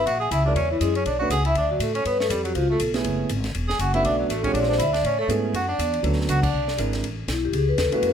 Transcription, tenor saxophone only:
0, 0, Header, 1, 2, 480
1, 0, Start_track
1, 0, Key_signature, 3, "major"
1, 0, Tempo, 248859
1, 122, Time_signature, 4, 2, 24, 8
1, 15681, End_track
2, 0, Start_track
2, 0, Title_t, "Tenor saxophone"
2, 0, Program_c, 0, 66
2, 117, Note_on_c, 0, 66, 70
2, 365, Note_off_c, 0, 66, 0
2, 376, Note_on_c, 0, 68, 77
2, 575, Note_off_c, 0, 68, 0
2, 608, Note_on_c, 0, 64, 72
2, 864, Note_off_c, 0, 64, 0
2, 872, Note_on_c, 0, 62, 66
2, 1064, Note_off_c, 0, 62, 0
2, 1076, Note_on_c, 0, 61, 66
2, 1337, Note_off_c, 0, 61, 0
2, 1381, Note_on_c, 0, 52, 52
2, 1538, Note_off_c, 0, 52, 0
2, 1549, Note_on_c, 0, 56, 59
2, 1813, Note_off_c, 0, 56, 0
2, 1853, Note_on_c, 0, 61, 73
2, 2035, Note_off_c, 0, 61, 0
2, 2052, Note_on_c, 0, 62, 59
2, 2289, Note_off_c, 0, 62, 0
2, 2300, Note_on_c, 0, 66, 75
2, 2497, Note_off_c, 0, 66, 0
2, 2529, Note_on_c, 0, 68, 79
2, 2784, Note_off_c, 0, 68, 0
2, 2809, Note_on_c, 0, 64, 74
2, 2993, Note_off_c, 0, 64, 0
2, 3038, Note_on_c, 0, 62, 72
2, 3279, Note_off_c, 0, 62, 0
2, 3305, Note_on_c, 0, 54, 48
2, 3481, Note_off_c, 0, 54, 0
2, 3504, Note_on_c, 0, 57, 54
2, 3748, Note_off_c, 0, 57, 0
2, 3759, Note_on_c, 0, 61, 83
2, 3948, Note_off_c, 0, 61, 0
2, 3977, Note_on_c, 0, 59, 61
2, 4224, Note_off_c, 0, 59, 0
2, 4235, Note_on_c, 0, 57, 64
2, 4416, Note_off_c, 0, 57, 0
2, 4428, Note_on_c, 0, 55, 63
2, 4693, Note_off_c, 0, 55, 0
2, 4705, Note_on_c, 0, 54, 64
2, 4900, Note_off_c, 0, 54, 0
2, 4918, Note_on_c, 0, 53, 62
2, 5178, Note_off_c, 0, 53, 0
2, 5209, Note_on_c, 0, 57, 65
2, 5393, Note_off_c, 0, 57, 0
2, 7093, Note_on_c, 0, 68, 72
2, 7294, Note_off_c, 0, 68, 0
2, 7339, Note_on_c, 0, 66, 69
2, 7590, Note_off_c, 0, 66, 0
2, 7604, Note_on_c, 0, 64, 75
2, 7790, Note_off_c, 0, 64, 0
2, 7818, Note_on_c, 0, 62, 69
2, 8058, Note_off_c, 0, 62, 0
2, 8070, Note_on_c, 0, 54, 46
2, 8263, Note_off_c, 0, 54, 0
2, 8285, Note_on_c, 0, 57, 66
2, 8543, Note_off_c, 0, 57, 0
2, 8562, Note_on_c, 0, 61, 77
2, 8737, Note_off_c, 0, 61, 0
2, 8749, Note_on_c, 0, 62, 69
2, 8890, Note_off_c, 0, 62, 0
2, 8902, Note_on_c, 0, 60, 58
2, 9045, Note_off_c, 0, 60, 0
2, 9056, Note_on_c, 0, 62, 64
2, 9218, Note_off_c, 0, 62, 0
2, 9226, Note_on_c, 0, 64, 66
2, 9492, Note_off_c, 0, 64, 0
2, 9509, Note_on_c, 0, 62, 68
2, 9703, Note_off_c, 0, 62, 0
2, 9759, Note_on_c, 0, 61, 66
2, 10001, Note_off_c, 0, 61, 0
2, 10031, Note_on_c, 0, 57, 73
2, 10205, Note_off_c, 0, 57, 0
2, 10715, Note_on_c, 0, 66, 72
2, 10948, Note_off_c, 0, 66, 0
2, 10960, Note_on_c, 0, 62, 62
2, 11595, Note_off_c, 0, 62, 0
2, 12144, Note_on_c, 0, 66, 87
2, 12381, Note_off_c, 0, 66, 0
2, 12393, Note_on_c, 0, 62, 66
2, 13031, Note_off_c, 0, 62, 0
2, 15681, End_track
0, 0, End_of_file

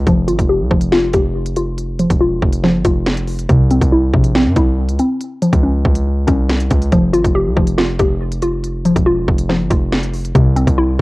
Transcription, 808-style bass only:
0, 0, Header, 1, 2, 480
1, 0, Start_track
1, 0, Tempo, 428571
1, 73, Time_signature, 4, 2, 24, 8
1, 12335, End_track
2, 0, Start_track
2, 0, Title_t, "808-style bass"
2, 0, Program_c, 0, 38
2, 73, Note_on_c, 0, 29, 110
2, 315, Note_on_c, 0, 32, 100
2, 332, Note_off_c, 0, 29, 0
2, 428, Note_off_c, 0, 32, 0
2, 434, Note_on_c, 0, 29, 102
2, 676, Note_on_c, 0, 36, 99
2, 693, Note_off_c, 0, 29, 0
2, 789, Note_off_c, 0, 36, 0
2, 794, Note_on_c, 0, 29, 102
2, 1255, Note_off_c, 0, 29, 0
2, 1272, Note_on_c, 0, 29, 104
2, 2309, Note_off_c, 0, 29, 0
2, 2353, Note_on_c, 0, 28, 101
2, 2699, Note_off_c, 0, 28, 0
2, 2713, Note_on_c, 0, 29, 108
2, 3073, Note_on_c, 0, 31, 99
2, 3090, Note_off_c, 0, 29, 0
2, 3187, Note_off_c, 0, 31, 0
2, 3192, Note_on_c, 0, 29, 105
2, 3884, Note_off_c, 0, 29, 0
2, 3913, Note_on_c, 0, 36, 110
2, 4258, Note_off_c, 0, 36, 0
2, 4273, Note_on_c, 0, 36, 102
2, 4619, Note_off_c, 0, 36, 0
2, 4633, Note_on_c, 0, 34, 105
2, 4991, Note_on_c, 0, 43, 99
2, 5008, Note_off_c, 0, 34, 0
2, 5106, Note_off_c, 0, 43, 0
2, 5111, Note_on_c, 0, 36, 106
2, 5472, Note_on_c, 0, 37, 101
2, 5489, Note_off_c, 0, 36, 0
2, 5587, Note_off_c, 0, 37, 0
2, 6192, Note_on_c, 0, 37, 103
2, 6538, Note_off_c, 0, 37, 0
2, 6552, Note_on_c, 0, 37, 104
2, 7014, Note_off_c, 0, 37, 0
2, 7032, Note_on_c, 0, 36, 106
2, 7493, Note_off_c, 0, 36, 0
2, 7513, Note_on_c, 0, 37, 102
2, 7743, Note_off_c, 0, 37, 0
2, 7753, Note_on_c, 0, 29, 108
2, 7992, Note_on_c, 0, 32, 100
2, 8009, Note_off_c, 0, 29, 0
2, 8106, Note_off_c, 0, 32, 0
2, 8113, Note_on_c, 0, 29, 104
2, 8353, Note_on_c, 0, 36, 102
2, 8370, Note_off_c, 0, 29, 0
2, 8467, Note_off_c, 0, 36, 0
2, 8474, Note_on_c, 0, 29, 104
2, 8934, Note_off_c, 0, 29, 0
2, 8953, Note_on_c, 0, 29, 106
2, 9990, Note_off_c, 0, 29, 0
2, 10033, Note_on_c, 0, 28, 104
2, 10379, Note_off_c, 0, 28, 0
2, 10393, Note_on_c, 0, 29, 107
2, 10753, Note_on_c, 0, 31, 102
2, 10770, Note_off_c, 0, 29, 0
2, 10867, Note_off_c, 0, 31, 0
2, 10872, Note_on_c, 0, 29, 102
2, 11564, Note_off_c, 0, 29, 0
2, 11592, Note_on_c, 0, 36, 114
2, 11938, Note_off_c, 0, 36, 0
2, 11953, Note_on_c, 0, 36, 102
2, 12299, Note_off_c, 0, 36, 0
2, 12335, End_track
0, 0, End_of_file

